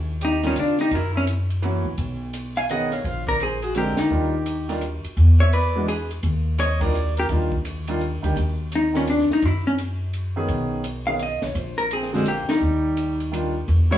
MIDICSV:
0, 0, Header, 1, 7, 480
1, 0, Start_track
1, 0, Tempo, 354400
1, 1243, Time_signature, 3, 2, 24, 8
1, 18933, End_track
2, 0, Start_track
2, 0, Title_t, "Trumpet"
2, 0, Program_c, 0, 56
2, 294, Note_on_c, 0, 67, 66
2, 576, Note_off_c, 0, 67, 0
2, 588, Note_on_c, 0, 63, 63
2, 750, Note_off_c, 0, 63, 0
2, 776, Note_on_c, 0, 65, 63
2, 1057, Note_off_c, 0, 65, 0
2, 1075, Note_on_c, 0, 67, 68
2, 1258, Note_on_c, 0, 70, 68
2, 1278, Note_off_c, 0, 67, 0
2, 1532, Note_off_c, 0, 70, 0
2, 1540, Note_on_c, 0, 64, 73
2, 1705, Note_off_c, 0, 64, 0
2, 3476, Note_on_c, 0, 80, 88
2, 3632, Note_off_c, 0, 80, 0
2, 3645, Note_on_c, 0, 78, 70
2, 3948, Note_on_c, 0, 77, 70
2, 3968, Note_off_c, 0, 78, 0
2, 4124, Note_off_c, 0, 77, 0
2, 4124, Note_on_c, 0, 77, 64
2, 4420, Note_off_c, 0, 77, 0
2, 4428, Note_on_c, 0, 74, 71
2, 4588, Note_off_c, 0, 74, 0
2, 4606, Note_on_c, 0, 72, 58
2, 4900, Note_on_c, 0, 68, 72
2, 4920, Note_off_c, 0, 72, 0
2, 5075, Note_off_c, 0, 68, 0
2, 5096, Note_on_c, 0, 70, 74
2, 5375, Note_off_c, 0, 70, 0
2, 5388, Note_on_c, 0, 67, 59
2, 6464, Note_off_c, 0, 67, 0
2, 7313, Note_on_c, 0, 76, 69
2, 7469, Note_off_c, 0, 76, 0
2, 7494, Note_on_c, 0, 74, 70
2, 7932, Note_off_c, 0, 74, 0
2, 7975, Note_on_c, 0, 71, 52
2, 8253, Note_off_c, 0, 71, 0
2, 8927, Note_on_c, 0, 75, 77
2, 9236, Note_on_c, 0, 74, 69
2, 9257, Note_off_c, 0, 75, 0
2, 9704, Note_off_c, 0, 74, 0
2, 9712, Note_on_c, 0, 70, 83
2, 9868, Note_off_c, 0, 70, 0
2, 16142, Note_on_c, 0, 60, 62
2, 16436, Note_on_c, 0, 56, 71
2, 16456, Note_off_c, 0, 60, 0
2, 16604, Note_off_c, 0, 56, 0
2, 16613, Note_on_c, 0, 58, 64
2, 16894, Note_off_c, 0, 58, 0
2, 16904, Note_on_c, 0, 55, 70
2, 17985, Note_off_c, 0, 55, 0
2, 18837, Note_on_c, 0, 64, 79
2, 18933, Note_off_c, 0, 64, 0
2, 18933, End_track
3, 0, Start_track
3, 0, Title_t, "Hollow-body jazz guitar"
3, 0, Program_c, 1, 26
3, 333, Note_on_c, 1, 63, 68
3, 608, Note_off_c, 1, 63, 0
3, 633, Note_on_c, 1, 61, 70
3, 780, Note_off_c, 1, 61, 0
3, 804, Note_on_c, 1, 62, 66
3, 1084, Note_off_c, 1, 62, 0
3, 1095, Note_on_c, 1, 63, 78
3, 1290, Note_off_c, 1, 63, 0
3, 1290, Note_on_c, 1, 64, 73
3, 1566, Note_off_c, 1, 64, 0
3, 1587, Note_on_c, 1, 61, 80
3, 1679, Note_off_c, 1, 61, 0
3, 3483, Note_on_c, 1, 77, 97
3, 3643, Note_off_c, 1, 77, 0
3, 3667, Note_on_c, 1, 75, 79
3, 3964, Note_off_c, 1, 75, 0
3, 3964, Note_on_c, 1, 73, 79
3, 4151, Note_off_c, 1, 73, 0
3, 4151, Note_on_c, 1, 72, 74
3, 4435, Note_off_c, 1, 72, 0
3, 4449, Note_on_c, 1, 70, 80
3, 4606, Note_off_c, 1, 70, 0
3, 4643, Note_on_c, 1, 68, 77
3, 4926, Note_off_c, 1, 68, 0
3, 4926, Note_on_c, 1, 66, 76
3, 5083, Note_off_c, 1, 66, 0
3, 5115, Note_on_c, 1, 67, 81
3, 5396, Note_off_c, 1, 67, 0
3, 5401, Note_on_c, 1, 63, 67
3, 6471, Note_off_c, 1, 63, 0
3, 7319, Note_on_c, 1, 73, 85
3, 7479, Note_off_c, 1, 73, 0
3, 7496, Note_on_c, 1, 71, 78
3, 7934, Note_off_c, 1, 71, 0
3, 7970, Note_on_c, 1, 68, 55
3, 8262, Note_off_c, 1, 68, 0
3, 8936, Note_on_c, 1, 73, 88
3, 9235, Note_off_c, 1, 73, 0
3, 9235, Note_on_c, 1, 70, 75
3, 9710, Note_off_c, 1, 70, 0
3, 9745, Note_on_c, 1, 67, 86
3, 9836, Note_off_c, 1, 67, 0
3, 11857, Note_on_c, 1, 63, 66
3, 12127, Note_off_c, 1, 63, 0
3, 12144, Note_on_c, 1, 61, 70
3, 12291, Note_off_c, 1, 61, 0
3, 12322, Note_on_c, 1, 62, 69
3, 12599, Note_off_c, 1, 62, 0
3, 12639, Note_on_c, 1, 63, 75
3, 12807, Note_off_c, 1, 63, 0
3, 12807, Note_on_c, 1, 64, 76
3, 13082, Note_off_c, 1, 64, 0
3, 13098, Note_on_c, 1, 61, 83
3, 13192, Note_off_c, 1, 61, 0
3, 14990, Note_on_c, 1, 77, 98
3, 15155, Note_off_c, 1, 77, 0
3, 15204, Note_on_c, 1, 75, 77
3, 15479, Note_off_c, 1, 75, 0
3, 15479, Note_on_c, 1, 73, 75
3, 15672, Note_off_c, 1, 73, 0
3, 15672, Note_on_c, 1, 72, 72
3, 15947, Note_off_c, 1, 72, 0
3, 15953, Note_on_c, 1, 70, 78
3, 16117, Note_off_c, 1, 70, 0
3, 16159, Note_on_c, 1, 68, 73
3, 16438, Note_off_c, 1, 68, 0
3, 16438, Note_on_c, 1, 66, 74
3, 16600, Note_off_c, 1, 66, 0
3, 16636, Note_on_c, 1, 67, 68
3, 16918, Note_off_c, 1, 67, 0
3, 16924, Note_on_c, 1, 63, 71
3, 17994, Note_off_c, 1, 63, 0
3, 18858, Note_on_c, 1, 73, 96
3, 18933, Note_off_c, 1, 73, 0
3, 18933, End_track
4, 0, Start_track
4, 0, Title_t, "Grand piano"
4, 0, Program_c, 2, 0
4, 582, Note_on_c, 2, 51, 60
4, 588, Note_on_c, 2, 55, 60
4, 593, Note_on_c, 2, 62, 60
4, 595, Note_on_c, 2, 65, 69
4, 742, Note_off_c, 2, 51, 0
4, 745, Note_off_c, 2, 55, 0
4, 747, Note_off_c, 2, 62, 0
4, 748, Note_off_c, 2, 65, 0
4, 2198, Note_on_c, 2, 52, 66
4, 2211, Note_on_c, 2, 58, 52
4, 2215, Note_on_c, 2, 61, 59
4, 2222, Note_on_c, 2, 66, 69
4, 2478, Note_off_c, 2, 52, 0
4, 2484, Note_off_c, 2, 58, 0
4, 2486, Note_off_c, 2, 61, 0
4, 2489, Note_off_c, 2, 66, 0
4, 3648, Note_on_c, 2, 51, 57
4, 3651, Note_on_c, 2, 59, 53
4, 3660, Note_on_c, 2, 61, 53
4, 3667, Note_on_c, 2, 68, 69
4, 3922, Note_off_c, 2, 51, 0
4, 3923, Note_off_c, 2, 59, 0
4, 3928, Note_off_c, 2, 61, 0
4, 3931, Note_off_c, 2, 68, 0
4, 5081, Note_on_c, 2, 50, 54
4, 5085, Note_on_c, 2, 56, 52
4, 5090, Note_on_c, 2, 60, 49
4, 5095, Note_on_c, 2, 67, 58
4, 5357, Note_off_c, 2, 50, 0
4, 5360, Note_off_c, 2, 56, 0
4, 5362, Note_off_c, 2, 60, 0
4, 5364, Note_off_c, 2, 67, 0
4, 5565, Note_on_c, 2, 51, 59
4, 5567, Note_on_c, 2, 55, 53
4, 5572, Note_on_c, 2, 62, 59
4, 5577, Note_on_c, 2, 65, 65
4, 5839, Note_off_c, 2, 51, 0
4, 5840, Note_off_c, 2, 55, 0
4, 5842, Note_off_c, 2, 62, 0
4, 5845, Note_off_c, 2, 65, 0
4, 6352, Note_on_c, 2, 51, 64
4, 6353, Note_on_c, 2, 55, 54
4, 6357, Note_on_c, 2, 62, 56
4, 6366, Note_on_c, 2, 65, 62
4, 6504, Note_off_c, 2, 51, 0
4, 6504, Note_off_c, 2, 55, 0
4, 6506, Note_off_c, 2, 62, 0
4, 6510, Note_off_c, 2, 65, 0
4, 7794, Note_on_c, 2, 52, 60
4, 7806, Note_on_c, 2, 56, 59
4, 7810, Note_on_c, 2, 62, 58
4, 7817, Note_on_c, 2, 66, 63
4, 7944, Note_off_c, 2, 52, 0
4, 7950, Note_off_c, 2, 56, 0
4, 7952, Note_off_c, 2, 62, 0
4, 7956, Note_off_c, 2, 66, 0
4, 9215, Note_on_c, 2, 51, 67
4, 9224, Note_on_c, 2, 55, 53
4, 9229, Note_on_c, 2, 62, 56
4, 9233, Note_on_c, 2, 65, 67
4, 9374, Note_off_c, 2, 51, 0
4, 9379, Note_off_c, 2, 55, 0
4, 9381, Note_off_c, 2, 62, 0
4, 9383, Note_off_c, 2, 65, 0
4, 9884, Note_on_c, 2, 55, 54
4, 9885, Note_on_c, 2, 51, 58
4, 9890, Note_on_c, 2, 62, 52
4, 9905, Note_on_c, 2, 65, 64
4, 10157, Note_off_c, 2, 55, 0
4, 10158, Note_off_c, 2, 51, 0
4, 10161, Note_off_c, 2, 62, 0
4, 10168, Note_off_c, 2, 65, 0
4, 10677, Note_on_c, 2, 51, 68
4, 10677, Note_on_c, 2, 55, 58
4, 10682, Note_on_c, 2, 62, 66
4, 10696, Note_on_c, 2, 65, 78
4, 10825, Note_off_c, 2, 51, 0
4, 10825, Note_off_c, 2, 55, 0
4, 10828, Note_off_c, 2, 62, 0
4, 10835, Note_off_c, 2, 65, 0
4, 11140, Note_on_c, 2, 51, 64
4, 11145, Note_on_c, 2, 55, 59
4, 11154, Note_on_c, 2, 62, 57
4, 11161, Note_on_c, 2, 67, 80
4, 11314, Note_off_c, 2, 51, 0
4, 11316, Note_off_c, 2, 55, 0
4, 11321, Note_off_c, 2, 62, 0
4, 11324, Note_off_c, 2, 67, 0
4, 12101, Note_on_c, 2, 51, 58
4, 12116, Note_on_c, 2, 55, 56
4, 12119, Note_on_c, 2, 62, 54
4, 12122, Note_on_c, 2, 65, 67
4, 12257, Note_off_c, 2, 51, 0
4, 12265, Note_off_c, 2, 55, 0
4, 12266, Note_off_c, 2, 62, 0
4, 12268, Note_off_c, 2, 65, 0
4, 14031, Note_on_c, 2, 51, 63
4, 14035, Note_on_c, 2, 59, 57
4, 14041, Note_on_c, 2, 61, 57
4, 14044, Note_on_c, 2, 68, 76
4, 14647, Note_off_c, 2, 51, 0
4, 14649, Note_off_c, 2, 59, 0
4, 14652, Note_off_c, 2, 61, 0
4, 14653, Note_off_c, 2, 68, 0
4, 14985, Note_on_c, 2, 51, 53
4, 14992, Note_on_c, 2, 59, 47
4, 14999, Note_on_c, 2, 61, 52
4, 15001, Note_on_c, 2, 68, 61
4, 15141, Note_off_c, 2, 51, 0
4, 15144, Note_off_c, 2, 59, 0
4, 15148, Note_off_c, 2, 61, 0
4, 15149, Note_off_c, 2, 68, 0
4, 16427, Note_on_c, 2, 50, 69
4, 16439, Note_on_c, 2, 56, 59
4, 16443, Note_on_c, 2, 60, 62
4, 16457, Note_on_c, 2, 67, 70
4, 16582, Note_off_c, 2, 50, 0
4, 16588, Note_off_c, 2, 56, 0
4, 16590, Note_off_c, 2, 60, 0
4, 16597, Note_off_c, 2, 67, 0
4, 18036, Note_on_c, 2, 51, 58
4, 18043, Note_on_c, 2, 55, 56
4, 18051, Note_on_c, 2, 62, 55
4, 18056, Note_on_c, 2, 65, 65
4, 18316, Note_off_c, 2, 51, 0
4, 18320, Note_off_c, 2, 55, 0
4, 18323, Note_off_c, 2, 62, 0
4, 18326, Note_off_c, 2, 65, 0
4, 18839, Note_on_c, 2, 52, 66
4, 18846, Note_on_c, 2, 56, 58
4, 18851, Note_on_c, 2, 62, 57
4, 18854, Note_on_c, 2, 66, 77
4, 18933, Note_off_c, 2, 52, 0
4, 18933, Note_off_c, 2, 56, 0
4, 18933, Note_off_c, 2, 62, 0
4, 18933, Note_off_c, 2, 66, 0
4, 18933, End_track
5, 0, Start_track
5, 0, Title_t, "Upright bass"
5, 0, Program_c, 3, 32
5, 0, Note_on_c, 3, 39, 85
5, 710, Note_off_c, 3, 39, 0
5, 749, Note_on_c, 3, 49, 65
5, 1202, Note_off_c, 3, 49, 0
5, 1236, Note_on_c, 3, 42, 88
5, 2453, Note_off_c, 3, 42, 0
5, 2504, Note_on_c, 3, 34, 67
5, 2666, Note_off_c, 3, 34, 0
5, 2680, Note_on_c, 3, 35, 89
5, 4065, Note_off_c, 3, 35, 0
5, 4123, Note_on_c, 3, 34, 82
5, 5334, Note_off_c, 3, 34, 0
5, 5553, Note_on_c, 3, 39, 83
5, 6769, Note_off_c, 3, 39, 0
5, 7001, Note_on_c, 3, 40, 90
5, 8384, Note_off_c, 3, 40, 0
5, 8441, Note_on_c, 3, 39, 88
5, 9824, Note_off_c, 3, 39, 0
5, 9879, Note_on_c, 3, 39, 89
5, 11092, Note_off_c, 3, 39, 0
5, 11142, Note_on_c, 3, 38, 65
5, 11303, Note_off_c, 3, 38, 0
5, 11323, Note_on_c, 3, 39, 84
5, 12534, Note_off_c, 3, 39, 0
5, 12766, Note_on_c, 3, 42, 89
5, 14148, Note_off_c, 3, 42, 0
5, 14200, Note_on_c, 3, 35, 85
5, 15414, Note_off_c, 3, 35, 0
5, 15466, Note_on_c, 3, 35, 73
5, 15627, Note_off_c, 3, 35, 0
5, 15641, Note_on_c, 3, 34, 90
5, 16855, Note_off_c, 3, 34, 0
5, 17074, Note_on_c, 3, 39, 82
5, 18464, Note_off_c, 3, 39, 0
5, 18527, Note_on_c, 3, 40, 92
5, 18933, Note_off_c, 3, 40, 0
5, 18933, End_track
6, 0, Start_track
6, 0, Title_t, "Muted upright bass strokes"
6, 5385, Note_on_c, 9, 29, 38
6, 5521, Note_off_c, 9, 29, 0
6, 6826, Note_on_c, 9, 29, 37
6, 6961, Note_off_c, 9, 29, 0
6, 12585, Note_on_c, 9, 29, 36
6, 12720, Note_off_c, 9, 29, 0
6, 16905, Note_on_c, 9, 29, 36
6, 17040, Note_off_c, 9, 29, 0
6, 18933, End_track
7, 0, Start_track
7, 0, Title_t, "Drums"
7, 286, Note_on_c, 9, 44, 56
7, 286, Note_on_c, 9, 51, 58
7, 422, Note_off_c, 9, 44, 0
7, 422, Note_off_c, 9, 51, 0
7, 586, Note_on_c, 9, 38, 40
7, 588, Note_on_c, 9, 51, 44
7, 722, Note_off_c, 9, 38, 0
7, 723, Note_off_c, 9, 51, 0
7, 758, Note_on_c, 9, 44, 53
7, 758, Note_on_c, 9, 51, 60
7, 893, Note_off_c, 9, 44, 0
7, 893, Note_off_c, 9, 51, 0
7, 1063, Note_on_c, 9, 38, 31
7, 1064, Note_on_c, 9, 51, 40
7, 1198, Note_off_c, 9, 38, 0
7, 1200, Note_off_c, 9, 51, 0
7, 1236, Note_on_c, 9, 51, 62
7, 1238, Note_on_c, 9, 36, 31
7, 1372, Note_off_c, 9, 51, 0
7, 1373, Note_off_c, 9, 36, 0
7, 1722, Note_on_c, 9, 44, 53
7, 1722, Note_on_c, 9, 51, 58
7, 1858, Note_off_c, 9, 44, 0
7, 1858, Note_off_c, 9, 51, 0
7, 2034, Note_on_c, 9, 51, 44
7, 2169, Note_off_c, 9, 51, 0
7, 2202, Note_on_c, 9, 51, 50
7, 2338, Note_off_c, 9, 51, 0
7, 2678, Note_on_c, 9, 51, 55
7, 2679, Note_on_c, 9, 36, 31
7, 2813, Note_off_c, 9, 51, 0
7, 2814, Note_off_c, 9, 36, 0
7, 3162, Note_on_c, 9, 44, 61
7, 3162, Note_on_c, 9, 51, 63
7, 3297, Note_off_c, 9, 44, 0
7, 3297, Note_off_c, 9, 51, 0
7, 3478, Note_on_c, 9, 51, 45
7, 3613, Note_off_c, 9, 51, 0
7, 3649, Note_on_c, 9, 44, 50
7, 3649, Note_on_c, 9, 51, 54
7, 3784, Note_off_c, 9, 44, 0
7, 3784, Note_off_c, 9, 51, 0
7, 3952, Note_on_c, 9, 38, 30
7, 3953, Note_on_c, 9, 51, 40
7, 4088, Note_off_c, 9, 38, 0
7, 4089, Note_off_c, 9, 51, 0
7, 4121, Note_on_c, 9, 36, 30
7, 4130, Note_on_c, 9, 51, 50
7, 4256, Note_off_c, 9, 36, 0
7, 4265, Note_off_c, 9, 51, 0
7, 4429, Note_on_c, 9, 36, 47
7, 4564, Note_off_c, 9, 36, 0
7, 4603, Note_on_c, 9, 44, 59
7, 4603, Note_on_c, 9, 51, 63
7, 4739, Note_off_c, 9, 44, 0
7, 4739, Note_off_c, 9, 51, 0
7, 4908, Note_on_c, 9, 51, 45
7, 5043, Note_off_c, 9, 51, 0
7, 5073, Note_on_c, 9, 44, 51
7, 5073, Note_on_c, 9, 51, 59
7, 5209, Note_off_c, 9, 44, 0
7, 5209, Note_off_c, 9, 51, 0
7, 5377, Note_on_c, 9, 38, 78
7, 5378, Note_on_c, 9, 51, 61
7, 5512, Note_off_c, 9, 38, 0
7, 5514, Note_off_c, 9, 51, 0
7, 6038, Note_on_c, 9, 44, 52
7, 6038, Note_on_c, 9, 51, 65
7, 6174, Note_off_c, 9, 44, 0
7, 6174, Note_off_c, 9, 51, 0
7, 6352, Note_on_c, 9, 38, 40
7, 6353, Note_on_c, 9, 51, 44
7, 6487, Note_off_c, 9, 38, 0
7, 6488, Note_off_c, 9, 51, 0
7, 6517, Note_on_c, 9, 44, 53
7, 6517, Note_on_c, 9, 51, 54
7, 6653, Note_off_c, 9, 44, 0
7, 6653, Note_off_c, 9, 51, 0
7, 6832, Note_on_c, 9, 51, 46
7, 6968, Note_off_c, 9, 51, 0
7, 7000, Note_on_c, 9, 36, 32
7, 7003, Note_on_c, 9, 51, 55
7, 7136, Note_off_c, 9, 36, 0
7, 7139, Note_off_c, 9, 51, 0
7, 7485, Note_on_c, 9, 51, 59
7, 7621, Note_off_c, 9, 51, 0
7, 7967, Note_on_c, 9, 44, 46
7, 7967, Note_on_c, 9, 51, 62
7, 8102, Note_off_c, 9, 44, 0
7, 8102, Note_off_c, 9, 51, 0
7, 8271, Note_on_c, 9, 51, 42
7, 8406, Note_off_c, 9, 51, 0
7, 8436, Note_on_c, 9, 51, 54
7, 8440, Note_on_c, 9, 36, 30
7, 8572, Note_off_c, 9, 51, 0
7, 8575, Note_off_c, 9, 36, 0
7, 8918, Note_on_c, 9, 44, 57
7, 8918, Note_on_c, 9, 51, 63
7, 9054, Note_off_c, 9, 44, 0
7, 9054, Note_off_c, 9, 51, 0
7, 9225, Note_on_c, 9, 36, 76
7, 9225, Note_on_c, 9, 51, 76
7, 9360, Note_off_c, 9, 36, 0
7, 9361, Note_off_c, 9, 51, 0
7, 9400, Note_on_c, 9, 44, 61
7, 9536, Note_off_c, 9, 44, 0
7, 9712, Note_on_c, 9, 51, 43
7, 9847, Note_off_c, 9, 51, 0
7, 9874, Note_on_c, 9, 51, 57
7, 9876, Note_on_c, 9, 36, 32
7, 10009, Note_off_c, 9, 51, 0
7, 10012, Note_off_c, 9, 36, 0
7, 10183, Note_on_c, 9, 36, 57
7, 10318, Note_off_c, 9, 36, 0
7, 10360, Note_on_c, 9, 44, 54
7, 10360, Note_on_c, 9, 51, 64
7, 10495, Note_off_c, 9, 44, 0
7, 10495, Note_off_c, 9, 51, 0
7, 10666, Note_on_c, 9, 51, 63
7, 10802, Note_off_c, 9, 51, 0
7, 10845, Note_on_c, 9, 44, 52
7, 10980, Note_off_c, 9, 44, 0
7, 11157, Note_on_c, 9, 51, 45
7, 11292, Note_off_c, 9, 51, 0
7, 11323, Note_on_c, 9, 36, 30
7, 11332, Note_on_c, 9, 51, 56
7, 11458, Note_off_c, 9, 36, 0
7, 11468, Note_off_c, 9, 51, 0
7, 11807, Note_on_c, 9, 44, 55
7, 11807, Note_on_c, 9, 51, 64
7, 11943, Note_off_c, 9, 44, 0
7, 11943, Note_off_c, 9, 51, 0
7, 12122, Note_on_c, 9, 38, 45
7, 12123, Note_on_c, 9, 51, 42
7, 12257, Note_off_c, 9, 38, 0
7, 12258, Note_off_c, 9, 51, 0
7, 12289, Note_on_c, 9, 44, 46
7, 12289, Note_on_c, 9, 51, 59
7, 12425, Note_off_c, 9, 44, 0
7, 12425, Note_off_c, 9, 51, 0
7, 12441, Note_on_c, 9, 38, 28
7, 12576, Note_off_c, 9, 38, 0
7, 12603, Note_on_c, 9, 38, 37
7, 12738, Note_off_c, 9, 38, 0
7, 12761, Note_on_c, 9, 51, 51
7, 12763, Note_on_c, 9, 36, 33
7, 12896, Note_off_c, 9, 51, 0
7, 12898, Note_off_c, 9, 36, 0
7, 13250, Note_on_c, 9, 44, 52
7, 13250, Note_on_c, 9, 51, 59
7, 13385, Note_off_c, 9, 44, 0
7, 13385, Note_off_c, 9, 51, 0
7, 13726, Note_on_c, 9, 51, 49
7, 13862, Note_off_c, 9, 51, 0
7, 14200, Note_on_c, 9, 36, 33
7, 14200, Note_on_c, 9, 51, 54
7, 14335, Note_off_c, 9, 36, 0
7, 14335, Note_off_c, 9, 51, 0
7, 14680, Note_on_c, 9, 44, 63
7, 14680, Note_on_c, 9, 51, 61
7, 14816, Note_off_c, 9, 44, 0
7, 14816, Note_off_c, 9, 51, 0
7, 15159, Note_on_c, 9, 44, 50
7, 15159, Note_on_c, 9, 51, 57
7, 15294, Note_off_c, 9, 44, 0
7, 15294, Note_off_c, 9, 51, 0
7, 15465, Note_on_c, 9, 38, 42
7, 15467, Note_on_c, 9, 51, 41
7, 15601, Note_off_c, 9, 38, 0
7, 15602, Note_off_c, 9, 51, 0
7, 15640, Note_on_c, 9, 36, 30
7, 15646, Note_on_c, 9, 51, 56
7, 15775, Note_off_c, 9, 36, 0
7, 15781, Note_off_c, 9, 51, 0
7, 15955, Note_on_c, 9, 51, 41
7, 16091, Note_off_c, 9, 51, 0
7, 16129, Note_on_c, 9, 51, 58
7, 16264, Note_off_c, 9, 51, 0
7, 16287, Note_on_c, 9, 38, 26
7, 16423, Note_off_c, 9, 38, 0
7, 16446, Note_on_c, 9, 38, 39
7, 16581, Note_off_c, 9, 38, 0
7, 16601, Note_on_c, 9, 44, 49
7, 16601, Note_on_c, 9, 51, 59
7, 16736, Note_off_c, 9, 44, 0
7, 16736, Note_off_c, 9, 51, 0
7, 16913, Note_on_c, 9, 38, 79
7, 16914, Note_on_c, 9, 51, 61
7, 17048, Note_off_c, 9, 38, 0
7, 17049, Note_off_c, 9, 51, 0
7, 17566, Note_on_c, 9, 44, 59
7, 17566, Note_on_c, 9, 51, 60
7, 17701, Note_off_c, 9, 44, 0
7, 17701, Note_off_c, 9, 51, 0
7, 17880, Note_on_c, 9, 51, 43
7, 18015, Note_off_c, 9, 51, 0
7, 18060, Note_on_c, 9, 44, 57
7, 18060, Note_on_c, 9, 51, 62
7, 18196, Note_off_c, 9, 44, 0
7, 18196, Note_off_c, 9, 51, 0
7, 18528, Note_on_c, 9, 36, 34
7, 18533, Note_on_c, 9, 51, 53
7, 18663, Note_off_c, 9, 36, 0
7, 18668, Note_off_c, 9, 51, 0
7, 18840, Note_on_c, 9, 38, 42
7, 18933, Note_off_c, 9, 38, 0
7, 18933, End_track
0, 0, End_of_file